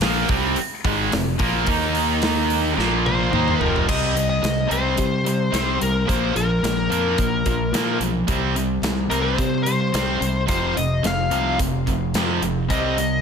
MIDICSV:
0, 0, Header, 1, 7, 480
1, 0, Start_track
1, 0, Key_signature, -3, "minor"
1, 0, Tempo, 551471
1, 1453, Time_signature, 4, 2, 24, 8
1, 11501, End_track
2, 0, Start_track
2, 0, Title_t, "Lead electric guitar"
2, 0, Program_c, 0, 29
2, 2664, Note_on_c, 0, 72, 95
2, 3152, Note_off_c, 0, 72, 0
2, 3152, Note_on_c, 0, 70, 95
2, 3342, Note_off_c, 0, 70, 0
2, 3388, Note_on_c, 0, 75, 102
2, 3715, Note_off_c, 0, 75, 0
2, 3740, Note_on_c, 0, 75, 93
2, 4070, Note_off_c, 0, 75, 0
2, 4108, Note_on_c, 0, 72, 87
2, 5064, Note_off_c, 0, 72, 0
2, 5068, Note_on_c, 0, 70, 76
2, 5283, Note_off_c, 0, 70, 0
2, 5300, Note_on_c, 0, 72, 83
2, 5538, Note_off_c, 0, 72, 0
2, 5542, Note_on_c, 0, 70, 82
2, 6942, Note_off_c, 0, 70, 0
2, 7922, Note_on_c, 0, 70, 67
2, 8026, Note_off_c, 0, 70, 0
2, 8029, Note_on_c, 0, 72, 75
2, 8375, Note_off_c, 0, 72, 0
2, 8385, Note_on_c, 0, 72, 87
2, 9085, Note_off_c, 0, 72, 0
2, 9131, Note_on_c, 0, 72, 78
2, 9372, Note_on_c, 0, 75, 90
2, 9380, Note_off_c, 0, 72, 0
2, 9620, Note_off_c, 0, 75, 0
2, 9632, Note_on_c, 0, 77, 80
2, 10071, Note_off_c, 0, 77, 0
2, 11057, Note_on_c, 0, 75, 92
2, 11501, Note_off_c, 0, 75, 0
2, 11501, End_track
3, 0, Start_track
3, 0, Title_t, "Distorted electric guitar"
3, 0, Program_c, 1, 30
3, 22, Note_on_c, 1, 46, 86
3, 30, Note_on_c, 1, 53, 95
3, 32, Note_on_c, 1, 58, 99
3, 249, Note_off_c, 1, 46, 0
3, 249, Note_off_c, 1, 53, 0
3, 252, Note_on_c, 1, 48, 84
3, 252, Note_on_c, 1, 55, 95
3, 253, Note_off_c, 1, 58, 0
3, 256, Note_on_c, 1, 60, 104
3, 486, Note_off_c, 1, 48, 0
3, 486, Note_off_c, 1, 55, 0
3, 488, Note_off_c, 1, 60, 0
3, 737, Note_on_c, 1, 51, 100
3, 740, Note_on_c, 1, 44, 79
3, 749, Note_on_c, 1, 56, 94
3, 968, Note_off_c, 1, 51, 0
3, 969, Note_off_c, 1, 44, 0
3, 973, Note_on_c, 1, 41, 59
3, 974, Note_off_c, 1, 56, 0
3, 976, Note_on_c, 1, 48, 66
3, 1165, Note_off_c, 1, 41, 0
3, 1167, Note_off_c, 1, 48, 0
3, 1201, Note_on_c, 1, 46, 74
3, 1203, Note_on_c, 1, 53, 83
3, 1208, Note_on_c, 1, 58, 86
3, 1429, Note_off_c, 1, 58, 0
3, 1432, Note_off_c, 1, 46, 0
3, 1436, Note_off_c, 1, 53, 0
3, 1436, Note_on_c, 1, 51, 87
3, 1439, Note_on_c, 1, 58, 89
3, 1445, Note_on_c, 1, 63, 91
3, 2396, Note_off_c, 1, 51, 0
3, 2398, Note_off_c, 1, 58, 0
3, 2401, Note_off_c, 1, 63, 0
3, 2403, Note_on_c, 1, 46, 98
3, 2410, Note_on_c, 1, 53, 103
3, 2413, Note_on_c, 1, 58, 101
3, 2876, Note_off_c, 1, 46, 0
3, 2879, Note_on_c, 1, 51, 86
3, 2882, Note_off_c, 1, 58, 0
3, 2883, Note_off_c, 1, 53, 0
3, 2893, Note_on_c, 1, 58, 88
3, 2893, Note_on_c, 1, 63, 87
3, 3118, Note_off_c, 1, 51, 0
3, 3125, Note_off_c, 1, 58, 0
3, 3125, Note_off_c, 1, 63, 0
3, 3137, Note_on_c, 1, 41, 72
3, 3140, Note_on_c, 1, 53, 90
3, 3142, Note_on_c, 1, 48, 73
3, 3359, Note_off_c, 1, 48, 0
3, 3367, Note_off_c, 1, 41, 0
3, 3368, Note_off_c, 1, 53, 0
3, 3369, Note_on_c, 1, 48, 83
3, 3382, Note_on_c, 1, 60, 91
3, 3383, Note_on_c, 1, 55, 90
3, 3596, Note_off_c, 1, 48, 0
3, 3597, Note_off_c, 1, 55, 0
3, 3602, Note_off_c, 1, 60, 0
3, 3607, Note_on_c, 1, 48, 59
3, 3608, Note_on_c, 1, 55, 68
3, 3825, Note_off_c, 1, 48, 0
3, 3825, Note_off_c, 1, 55, 0
3, 3850, Note_on_c, 1, 55, 78
3, 3851, Note_on_c, 1, 48, 65
3, 4052, Note_off_c, 1, 48, 0
3, 4062, Note_off_c, 1, 55, 0
3, 4063, Note_on_c, 1, 48, 80
3, 4072, Note_on_c, 1, 55, 85
3, 4074, Note_on_c, 1, 60, 93
3, 4302, Note_off_c, 1, 48, 0
3, 4302, Note_off_c, 1, 55, 0
3, 4308, Note_off_c, 1, 60, 0
3, 4313, Note_on_c, 1, 55, 68
3, 4319, Note_on_c, 1, 48, 73
3, 4538, Note_off_c, 1, 55, 0
3, 4541, Note_off_c, 1, 48, 0
3, 4563, Note_on_c, 1, 48, 59
3, 4567, Note_on_c, 1, 55, 65
3, 4783, Note_off_c, 1, 48, 0
3, 4783, Note_off_c, 1, 55, 0
3, 4793, Note_on_c, 1, 48, 80
3, 4793, Note_on_c, 1, 55, 77
3, 4794, Note_on_c, 1, 60, 87
3, 5028, Note_off_c, 1, 48, 0
3, 5028, Note_off_c, 1, 55, 0
3, 5028, Note_off_c, 1, 60, 0
3, 5038, Note_on_c, 1, 48, 53
3, 5038, Note_on_c, 1, 55, 56
3, 5260, Note_off_c, 1, 48, 0
3, 5261, Note_off_c, 1, 55, 0
3, 5270, Note_on_c, 1, 46, 84
3, 5271, Note_on_c, 1, 53, 85
3, 5281, Note_on_c, 1, 58, 88
3, 5506, Note_off_c, 1, 46, 0
3, 5506, Note_off_c, 1, 53, 0
3, 5512, Note_off_c, 1, 58, 0
3, 5518, Note_on_c, 1, 46, 59
3, 5525, Note_on_c, 1, 53, 73
3, 5741, Note_off_c, 1, 46, 0
3, 5744, Note_off_c, 1, 53, 0
3, 5771, Note_on_c, 1, 46, 68
3, 5778, Note_on_c, 1, 53, 78
3, 5987, Note_off_c, 1, 46, 0
3, 5990, Note_off_c, 1, 53, 0
3, 6001, Note_on_c, 1, 46, 84
3, 6006, Note_on_c, 1, 53, 81
3, 6007, Note_on_c, 1, 58, 80
3, 6232, Note_off_c, 1, 46, 0
3, 6234, Note_off_c, 1, 53, 0
3, 6235, Note_off_c, 1, 58, 0
3, 6253, Note_on_c, 1, 46, 67
3, 6255, Note_on_c, 1, 53, 82
3, 6468, Note_off_c, 1, 46, 0
3, 6469, Note_off_c, 1, 53, 0
3, 6494, Note_on_c, 1, 46, 66
3, 6496, Note_on_c, 1, 53, 67
3, 6709, Note_off_c, 1, 46, 0
3, 6710, Note_off_c, 1, 53, 0
3, 6727, Note_on_c, 1, 46, 77
3, 6734, Note_on_c, 1, 58, 86
3, 6735, Note_on_c, 1, 53, 84
3, 6954, Note_off_c, 1, 53, 0
3, 6955, Note_off_c, 1, 46, 0
3, 6958, Note_off_c, 1, 58, 0
3, 6965, Note_on_c, 1, 46, 56
3, 6965, Note_on_c, 1, 53, 69
3, 7184, Note_off_c, 1, 53, 0
3, 7185, Note_off_c, 1, 46, 0
3, 7206, Note_on_c, 1, 48, 72
3, 7212, Note_on_c, 1, 55, 85
3, 7218, Note_on_c, 1, 60, 89
3, 7435, Note_off_c, 1, 48, 0
3, 7438, Note_off_c, 1, 55, 0
3, 7440, Note_off_c, 1, 60, 0
3, 7450, Note_on_c, 1, 48, 67
3, 7450, Note_on_c, 1, 55, 63
3, 7667, Note_off_c, 1, 48, 0
3, 7667, Note_off_c, 1, 55, 0
3, 7688, Note_on_c, 1, 48, 75
3, 7693, Note_on_c, 1, 55, 74
3, 7906, Note_off_c, 1, 48, 0
3, 7909, Note_off_c, 1, 55, 0
3, 7918, Note_on_c, 1, 48, 79
3, 7921, Note_on_c, 1, 55, 89
3, 7929, Note_on_c, 1, 60, 84
3, 8151, Note_off_c, 1, 48, 0
3, 8152, Note_off_c, 1, 55, 0
3, 8156, Note_off_c, 1, 60, 0
3, 8173, Note_on_c, 1, 48, 61
3, 8181, Note_on_c, 1, 55, 85
3, 8389, Note_off_c, 1, 48, 0
3, 8393, Note_off_c, 1, 55, 0
3, 8417, Note_on_c, 1, 48, 57
3, 8421, Note_on_c, 1, 55, 66
3, 8627, Note_off_c, 1, 48, 0
3, 8628, Note_off_c, 1, 55, 0
3, 8637, Note_on_c, 1, 48, 80
3, 8639, Note_on_c, 1, 55, 83
3, 8645, Note_on_c, 1, 60, 86
3, 8871, Note_off_c, 1, 48, 0
3, 8872, Note_off_c, 1, 55, 0
3, 8875, Note_off_c, 1, 60, 0
3, 8886, Note_on_c, 1, 48, 54
3, 8893, Note_on_c, 1, 55, 61
3, 9106, Note_off_c, 1, 48, 0
3, 9109, Note_off_c, 1, 55, 0
3, 9122, Note_on_c, 1, 41, 72
3, 9124, Note_on_c, 1, 48, 88
3, 9124, Note_on_c, 1, 53, 84
3, 9353, Note_off_c, 1, 41, 0
3, 9354, Note_off_c, 1, 48, 0
3, 9355, Note_off_c, 1, 53, 0
3, 9365, Note_on_c, 1, 41, 62
3, 9368, Note_on_c, 1, 48, 65
3, 9586, Note_off_c, 1, 41, 0
3, 9587, Note_off_c, 1, 48, 0
3, 9601, Note_on_c, 1, 41, 74
3, 9604, Note_on_c, 1, 48, 73
3, 9824, Note_off_c, 1, 41, 0
3, 9826, Note_off_c, 1, 48, 0
3, 9838, Note_on_c, 1, 41, 76
3, 9845, Note_on_c, 1, 48, 78
3, 9851, Note_on_c, 1, 53, 82
3, 10072, Note_off_c, 1, 41, 0
3, 10076, Note_off_c, 1, 48, 0
3, 10079, Note_off_c, 1, 53, 0
3, 10088, Note_on_c, 1, 41, 62
3, 10092, Note_on_c, 1, 48, 71
3, 10308, Note_off_c, 1, 41, 0
3, 10310, Note_off_c, 1, 48, 0
3, 10325, Note_on_c, 1, 41, 64
3, 10335, Note_on_c, 1, 48, 65
3, 10546, Note_off_c, 1, 41, 0
3, 10551, Note_off_c, 1, 48, 0
3, 10580, Note_on_c, 1, 41, 77
3, 10583, Note_on_c, 1, 48, 78
3, 10587, Note_on_c, 1, 53, 72
3, 10800, Note_off_c, 1, 41, 0
3, 10805, Note_off_c, 1, 48, 0
3, 10807, Note_off_c, 1, 53, 0
3, 10810, Note_on_c, 1, 41, 61
3, 10822, Note_on_c, 1, 48, 60
3, 11029, Note_off_c, 1, 41, 0
3, 11031, Note_off_c, 1, 48, 0
3, 11041, Note_on_c, 1, 48, 84
3, 11044, Note_on_c, 1, 55, 92
3, 11054, Note_on_c, 1, 60, 91
3, 11275, Note_off_c, 1, 48, 0
3, 11276, Note_off_c, 1, 55, 0
3, 11281, Note_off_c, 1, 60, 0
3, 11295, Note_on_c, 1, 48, 51
3, 11299, Note_on_c, 1, 55, 59
3, 11501, Note_off_c, 1, 48, 0
3, 11501, Note_off_c, 1, 55, 0
3, 11501, End_track
4, 0, Start_track
4, 0, Title_t, "Fingered electric bass"
4, 0, Program_c, 2, 33
4, 22, Note_on_c, 2, 34, 89
4, 242, Note_off_c, 2, 34, 0
4, 253, Note_on_c, 2, 36, 83
4, 477, Note_off_c, 2, 36, 0
4, 738, Note_on_c, 2, 32, 88
4, 959, Note_off_c, 2, 32, 0
4, 984, Note_on_c, 2, 29, 77
4, 1202, Note_off_c, 2, 29, 0
4, 1211, Note_on_c, 2, 34, 89
4, 1435, Note_off_c, 2, 34, 0
4, 1460, Note_on_c, 2, 39, 96
4, 2380, Note_off_c, 2, 39, 0
4, 2414, Note_on_c, 2, 34, 94
4, 2859, Note_off_c, 2, 34, 0
4, 2895, Note_on_c, 2, 39, 88
4, 3116, Note_off_c, 2, 39, 0
4, 3137, Note_on_c, 2, 29, 90
4, 3357, Note_off_c, 2, 29, 0
4, 3379, Note_on_c, 2, 36, 83
4, 3820, Note_off_c, 2, 36, 0
4, 3855, Note_on_c, 2, 36, 74
4, 4071, Note_off_c, 2, 36, 0
4, 4089, Note_on_c, 2, 36, 73
4, 4308, Note_off_c, 2, 36, 0
4, 4334, Note_on_c, 2, 48, 77
4, 4777, Note_off_c, 2, 48, 0
4, 4810, Note_on_c, 2, 36, 84
4, 5028, Note_off_c, 2, 36, 0
4, 5060, Note_on_c, 2, 36, 70
4, 5274, Note_off_c, 2, 36, 0
4, 5299, Note_on_c, 2, 34, 80
4, 5513, Note_off_c, 2, 34, 0
4, 5529, Note_on_c, 2, 34, 75
4, 5748, Note_off_c, 2, 34, 0
4, 5770, Note_on_c, 2, 34, 84
4, 5988, Note_off_c, 2, 34, 0
4, 6004, Note_on_c, 2, 41, 78
4, 6225, Note_off_c, 2, 41, 0
4, 6252, Note_on_c, 2, 34, 84
4, 6470, Note_off_c, 2, 34, 0
4, 6490, Note_on_c, 2, 34, 79
4, 6708, Note_off_c, 2, 34, 0
4, 6718, Note_on_c, 2, 46, 72
4, 6942, Note_off_c, 2, 46, 0
4, 6961, Note_on_c, 2, 35, 79
4, 7184, Note_off_c, 2, 35, 0
4, 7203, Note_on_c, 2, 36, 78
4, 7653, Note_off_c, 2, 36, 0
4, 7675, Note_on_c, 2, 36, 84
4, 7901, Note_off_c, 2, 36, 0
4, 7921, Note_on_c, 2, 36, 70
4, 8144, Note_off_c, 2, 36, 0
4, 8168, Note_on_c, 2, 48, 84
4, 8616, Note_off_c, 2, 48, 0
4, 8648, Note_on_c, 2, 36, 85
4, 8868, Note_off_c, 2, 36, 0
4, 8881, Note_on_c, 2, 36, 81
4, 9105, Note_off_c, 2, 36, 0
4, 9125, Note_on_c, 2, 29, 84
4, 9347, Note_off_c, 2, 29, 0
4, 9371, Note_on_c, 2, 29, 83
4, 9590, Note_off_c, 2, 29, 0
4, 9602, Note_on_c, 2, 29, 79
4, 9825, Note_off_c, 2, 29, 0
4, 9840, Note_on_c, 2, 36, 71
4, 10065, Note_off_c, 2, 36, 0
4, 10087, Note_on_c, 2, 29, 81
4, 10309, Note_off_c, 2, 29, 0
4, 10336, Note_on_c, 2, 29, 83
4, 10554, Note_off_c, 2, 29, 0
4, 10564, Note_on_c, 2, 41, 81
4, 10787, Note_off_c, 2, 41, 0
4, 10809, Note_on_c, 2, 29, 74
4, 11030, Note_off_c, 2, 29, 0
4, 11050, Note_on_c, 2, 36, 78
4, 11499, Note_off_c, 2, 36, 0
4, 11501, End_track
5, 0, Start_track
5, 0, Title_t, "Muted distorted electric guitar strokes"
5, 497, Note_on_c, 9, 29, 56
5, 584, Note_off_c, 9, 29, 0
5, 11501, End_track
6, 0, Start_track
6, 0, Title_t, "Muted fingered electric bass strokes"
6, 506, Note_on_c, 9, 29, 42
6, 593, Note_off_c, 9, 29, 0
6, 11501, End_track
7, 0, Start_track
7, 0, Title_t, "Drums"
7, 7, Note_on_c, 9, 46, 76
7, 16, Note_on_c, 9, 38, 97
7, 95, Note_off_c, 9, 46, 0
7, 103, Note_off_c, 9, 38, 0
7, 249, Note_on_c, 9, 46, 57
7, 254, Note_on_c, 9, 36, 106
7, 336, Note_off_c, 9, 46, 0
7, 341, Note_off_c, 9, 36, 0
7, 488, Note_on_c, 9, 46, 69
7, 575, Note_off_c, 9, 46, 0
7, 736, Note_on_c, 9, 36, 105
7, 738, Note_on_c, 9, 46, 58
7, 823, Note_off_c, 9, 36, 0
7, 825, Note_off_c, 9, 46, 0
7, 977, Note_on_c, 9, 46, 83
7, 986, Note_on_c, 9, 38, 105
7, 1064, Note_off_c, 9, 46, 0
7, 1073, Note_off_c, 9, 38, 0
7, 1210, Note_on_c, 9, 46, 63
7, 1216, Note_on_c, 9, 36, 104
7, 1297, Note_off_c, 9, 46, 0
7, 1303, Note_off_c, 9, 36, 0
7, 1449, Note_on_c, 9, 46, 84
7, 1456, Note_on_c, 9, 36, 94
7, 1536, Note_off_c, 9, 46, 0
7, 1543, Note_off_c, 9, 36, 0
7, 1695, Note_on_c, 9, 46, 58
7, 1782, Note_off_c, 9, 46, 0
7, 1930, Note_on_c, 9, 46, 74
7, 1939, Note_on_c, 9, 38, 108
7, 2017, Note_off_c, 9, 46, 0
7, 2026, Note_off_c, 9, 38, 0
7, 2177, Note_on_c, 9, 46, 55
7, 2264, Note_off_c, 9, 46, 0
7, 2428, Note_on_c, 9, 38, 54
7, 2515, Note_off_c, 9, 38, 0
7, 2666, Note_on_c, 9, 48, 73
7, 2753, Note_off_c, 9, 48, 0
7, 2899, Note_on_c, 9, 47, 87
7, 2986, Note_off_c, 9, 47, 0
7, 3028, Note_on_c, 9, 45, 77
7, 3115, Note_off_c, 9, 45, 0
7, 3142, Note_on_c, 9, 43, 92
7, 3229, Note_off_c, 9, 43, 0
7, 3273, Note_on_c, 9, 43, 84
7, 3360, Note_off_c, 9, 43, 0
7, 3383, Note_on_c, 9, 36, 101
7, 3386, Note_on_c, 9, 49, 99
7, 3470, Note_off_c, 9, 36, 0
7, 3473, Note_off_c, 9, 49, 0
7, 3627, Note_on_c, 9, 42, 64
7, 3714, Note_off_c, 9, 42, 0
7, 3863, Note_on_c, 9, 42, 75
7, 3872, Note_on_c, 9, 38, 96
7, 3950, Note_off_c, 9, 42, 0
7, 3959, Note_off_c, 9, 38, 0
7, 4101, Note_on_c, 9, 42, 62
7, 4188, Note_off_c, 9, 42, 0
7, 4330, Note_on_c, 9, 42, 78
7, 4338, Note_on_c, 9, 36, 88
7, 4417, Note_off_c, 9, 42, 0
7, 4425, Note_off_c, 9, 36, 0
7, 4582, Note_on_c, 9, 42, 62
7, 4669, Note_off_c, 9, 42, 0
7, 4820, Note_on_c, 9, 42, 93
7, 4829, Note_on_c, 9, 38, 101
7, 4907, Note_off_c, 9, 42, 0
7, 4916, Note_off_c, 9, 38, 0
7, 5061, Note_on_c, 9, 42, 69
7, 5148, Note_off_c, 9, 42, 0
7, 5302, Note_on_c, 9, 36, 103
7, 5304, Note_on_c, 9, 42, 82
7, 5389, Note_off_c, 9, 36, 0
7, 5391, Note_off_c, 9, 42, 0
7, 5537, Note_on_c, 9, 42, 62
7, 5624, Note_off_c, 9, 42, 0
7, 5781, Note_on_c, 9, 42, 77
7, 5790, Note_on_c, 9, 38, 97
7, 5868, Note_off_c, 9, 42, 0
7, 5877, Note_off_c, 9, 38, 0
7, 6022, Note_on_c, 9, 42, 62
7, 6109, Note_off_c, 9, 42, 0
7, 6250, Note_on_c, 9, 42, 70
7, 6254, Note_on_c, 9, 36, 90
7, 6337, Note_off_c, 9, 42, 0
7, 6341, Note_off_c, 9, 36, 0
7, 6490, Note_on_c, 9, 42, 60
7, 6493, Note_on_c, 9, 36, 74
7, 6577, Note_off_c, 9, 42, 0
7, 6580, Note_off_c, 9, 36, 0
7, 6736, Note_on_c, 9, 42, 81
7, 6745, Note_on_c, 9, 38, 95
7, 6823, Note_off_c, 9, 42, 0
7, 6832, Note_off_c, 9, 38, 0
7, 6970, Note_on_c, 9, 42, 63
7, 7057, Note_off_c, 9, 42, 0
7, 7207, Note_on_c, 9, 42, 84
7, 7209, Note_on_c, 9, 36, 99
7, 7294, Note_off_c, 9, 42, 0
7, 7296, Note_off_c, 9, 36, 0
7, 7452, Note_on_c, 9, 42, 65
7, 7539, Note_off_c, 9, 42, 0
7, 7688, Note_on_c, 9, 42, 78
7, 7697, Note_on_c, 9, 38, 99
7, 7775, Note_off_c, 9, 42, 0
7, 7784, Note_off_c, 9, 38, 0
7, 7932, Note_on_c, 9, 42, 61
7, 8019, Note_off_c, 9, 42, 0
7, 8168, Note_on_c, 9, 36, 93
7, 8173, Note_on_c, 9, 42, 74
7, 8255, Note_off_c, 9, 36, 0
7, 8260, Note_off_c, 9, 42, 0
7, 8411, Note_on_c, 9, 42, 64
7, 8498, Note_off_c, 9, 42, 0
7, 8651, Note_on_c, 9, 42, 86
7, 8660, Note_on_c, 9, 38, 95
7, 8738, Note_off_c, 9, 42, 0
7, 8747, Note_off_c, 9, 38, 0
7, 8896, Note_on_c, 9, 42, 65
7, 8983, Note_off_c, 9, 42, 0
7, 9125, Note_on_c, 9, 42, 85
7, 9128, Note_on_c, 9, 36, 110
7, 9212, Note_off_c, 9, 42, 0
7, 9216, Note_off_c, 9, 36, 0
7, 9376, Note_on_c, 9, 42, 67
7, 9463, Note_off_c, 9, 42, 0
7, 9611, Note_on_c, 9, 42, 84
7, 9620, Note_on_c, 9, 38, 101
7, 9698, Note_off_c, 9, 42, 0
7, 9707, Note_off_c, 9, 38, 0
7, 9847, Note_on_c, 9, 42, 58
7, 9934, Note_off_c, 9, 42, 0
7, 10092, Note_on_c, 9, 36, 96
7, 10092, Note_on_c, 9, 42, 78
7, 10179, Note_off_c, 9, 36, 0
7, 10179, Note_off_c, 9, 42, 0
7, 10332, Note_on_c, 9, 36, 72
7, 10334, Note_on_c, 9, 42, 58
7, 10419, Note_off_c, 9, 36, 0
7, 10421, Note_off_c, 9, 42, 0
7, 10569, Note_on_c, 9, 42, 79
7, 10577, Note_on_c, 9, 38, 99
7, 10656, Note_off_c, 9, 42, 0
7, 10664, Note_off_c, 9, 38, 0
7, 10815, Note_on_c, 9, 42, 59
7, 10902, Note_off_c, 9, 42, 0
7, 11055, Note_on_c, 9, 36, 93
7, 11057, Note_on_c, 9, 42, 75
7, 11142, Note_off_c, 9, 36, 0
7, 11144, Note_off_c, 9, 42, 0
7, 11297, Note_on_c, 9, 42, 62
7, 11384, Note_off_c, 9, 42, 0
7, 11501, End_track
0, 0, End_of_file